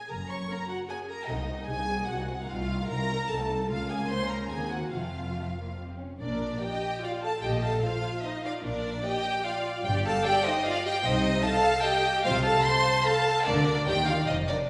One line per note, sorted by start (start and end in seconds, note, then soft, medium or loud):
0.08 0.42 F#1 medium
0.08 0.42 F#2 medium
0.08 0.18 A#4 medium
0.08 0.30 A#5 medium
0.29 0.49 C#5 medium
0.29 0.50 C#6 medium
0.49 0.57 A#3 soft
0.49 0.57 C#4 soft
0.49 0.58 A#4 medium
0.49 0.70 A#5 medium
0.68 0.88 F#4 medium
0.68 0.77 F#5 medium
0.89 0.98 A#3 soft
0.89 0.97 C#4 soft
0.89 1.09 G#4 medium
0.89 0.97 G#5 medium
1.09 1.30 A#4 medium
1.09 1.29 A#5 medium
1.28 1.64 C2 medium
1.28 1.38 C4 medium
1.28 1.69 D#4 medium
1.28 1.38 F#4 medium
1.28 1.69 D#5 medium
1.38 1.49 A#3 soft
1.38 1.49 D#4 soft
1.48 1.58 C4 soft
1.48 1.58 F#4 soft
1.58 1.68 A#3 medium
1.58 1.68 D#4 soft
1.67 2.04 C2 medium
1.67 1.78 C4 medium
1.67 1.78 F#4 soft
1.67 2.09 G#4 medium
1.67 2.07 G#5 loud
1.78 1.88 A#3 soft
1.78 1.88 D#4 soft
1.87 1.98 C4 soft
1.87 1.98 F#4 soft
1.98 2.08 A#3 medium
1.98 2.08 D#4 soft
2.07 2.44 C2 medium
2.07 2.18 C4 medium
2.07 2.18 F#4 medium
2.07 2.49 F#4 medium
2.07 2.48 F#5 medium
2.18 2.29 A#3 soft
2.18 2.29 D#4 soft
2.29 2.39 C4 soft
2.29 2.39 F#4 soft
2.39 2.49 A#3 soft
2.39 2.49 D#4 medium
2.49 2.85 C2 medium
2.49 2.59 C4 medium
2.49 2.59 D#4 medium
2.49 2.89 F4 medium
2.49 2.90 F5 medium
2.60 2.70 A3 medium
2.60 2.70 F4 soft
2.69 2.79 C4 medium
2.69 2.80 D#4 soft
2.78 2.89 A3 medium
2.78 2.89 F4 medium
2.88 3.25 C2 medium
2.88 2.99 C4 medium
2.88 2.99 D#4 medium
2.88 3.29 A#4 medium
2.88 3.28 A#5 loud
3.00 3.10 A3 medium
3.00 3.10 F4 medium
3.10 3.20 C4 medium
3.10 3.20 D#4 soft
3.19 3.30 A3 medium
3.19 3.30 F4 soft
3.29 3.66 C2 medium
3.29 3.39 C4 medium
3.29 3.39 D#4 medium
3.29 3.70 A4 medium
3.29 3.70 A5 medium
3.39 3.50 A3 medium
3.39 3.50 F4 medium
3.50 3.60 C4 medium
3.50 3.60 D#4 medium
3.61 3.71 A3 medium
3.61 3.71 F4 medium
3.70 4.48 C#2 medium
3.70 4.48 A#3 medium
3.70 4.48 C#4 medium
3.70 3.90 F4 medium
3.70 3.90 F5 medium
3.90 3.98 G#4 medium
3.90 4.10 G#5 medium
4.10 4.31 C5 medium
4.10 4.31 C6 loud
4.29 4.51 A#4 medium
4.29 4.51 A#5 medium
4.49 4.94 D#2 medium
4.49 4.73 G#4 medium
4.49 4.71 G#5 medium
4.53 4.94 A#3 medium
4.53 4.94 C4 medium
4.71 4.94 F#4 medium
4.71 4.93 F#5 medium
4.93 5.98 F1 medium
4.93 5.98 F2 medium
4.93 5.32 A3 medium
4.93 5.32 C4 medium
4.93 5.79 F4 medium
4.93 5.77 F5 medium
5.38 5.46 A3 medium
5.59 5.79 A#3 soft
5.79 6.00 C4 medium
6.00 6.21 C#4 medium
6.21 6.55 A#1 medium
6.21 6.56 A#2 medium
6.21 6.60 D4 medium
6.21 6.60 A#4 medium
6.21 6.60 D5 medium
6.61 7.02 G4 medium
6.61 7.03 D#5 medium
6.61 7.03 G5 medium
7.03 7.24 F4 medium
7.03 7.12 D5 medium
7.03 7.24 F5 medium
7.22 7.44 A4 medium
7.22 7.32 F5 medium
7.22 7.43 A5 loud
7.42 7.77 A#1 medium
7.42 7.77 A#2 medium
7.42 7.64 G4 medium
7.42 7.63 D#5 medium
7.42 7.50 G5 medium
7.62 7.84 A4 medium
7.62 7.84 F5 medium
7.62 7.83 A5 medium
7.83 8.25 F4 medium
7.83 8.23 C5 medium
7.83 8.23 F5 medium
8.23 8.45 D#4 medium
8.23 8.32 C5 medium
8.23 8.44 D#5 medium
8.45 8.65 F4 medium
8.45 8.53 D5 medium
8.45 8.53 F5 loud
8.64 8.98 A#1 medium
8.64 8.98 A#2 medium
8.64 9.05 D4 medium
8.64 9.04 A#4 loud
8.64 9.04 D5 loud
9.05 9.45 G4 loud
9.05 9.45 D#5 loud
9.05 9.45 G5 loud
9.45 9.85 F4 medium
9.45 9.85 D5 medium
9.45 9.85 F5 medium
9.84 10.19 G1 medium
9.84 10.19 G2 loud
9.84 10.06 G4 loud
9.84 10.06 D5 loud
9.84 9.92 G5 loud
10.05 10.27 A4 loud
10.05 10.25 F5 loud
10.05 10.25 A5 loud
10.26 10.46 G4 loud
10.26 10.46 D5 loud
10.26 10.46 G5 loud
10.46 10.54 D#4 medium
10.46 10.66 C5 loud
10.46 10.66 D#5 loud
10.66 10.86 F4 loud
10.66 10.86 D5 loud
10.66 10.87 F5 loud
10.86 10.94 G4 medium
10.86 10.94 D#5 loud
10.86 11.06 G5 loud
11.05 11.39 C2 loud
11.05 11.39 C3 medium
11.05 11.45 D#4 loud
11.05 11.45 C5 loud
11.05 11.46 D#5 loud
11.45 11.85 A4 loud
11.45 11.85 F5 loud
11.45 11.86 A5 loud
11.84 12.26 G4 loud
11.84 12.26 D#5 loud
11.84 12.25 G5 loud
12.24 12.59 C2 loud
12.24 12.60 C3 loud
12.24 12.46 F4 loud
12.24 12.34 C5 loud
12.24 12.45 F5 loud
12.44 12.55 A4 loud
12.44 12.66 F5 loud
12.44 12.65 A5 loud
12.64 13.05 C5 loud
12.64 13.05 A5 loud
12.64 13.05 C6 loud
13.05 13.47 A4 loud
13.05 13.46 F5 loud
13.05 13.46 A5 loud
13.46 13.80 D2 loud
13.46 13.80 D3 loud
13.46 13.86 D4 medium
13.46 13.87 A#4 loud
13.46 13.87 D5 loud
13.87 14.21 D#2 medium
13.87 14.21 D#3 medium
13.87 13.96 G4 loud
13.87 14.08 D#5 loud
13.87 14.07 G5 loud
14.08 14.16 F4 medium
14.08 14.29 D5 medium
14.08 14.28 F5 loud
14.27 14.63 F1 medium
14.27 14.63 F2 medium
14.27 14.37 D#4 medium
14.27 14.38 C5 medium
14.27 14.35 D#5 loud
14.49 14.70 D4 medium
14.49 14.59 A#4 medium
14.49 14.57 D5 loud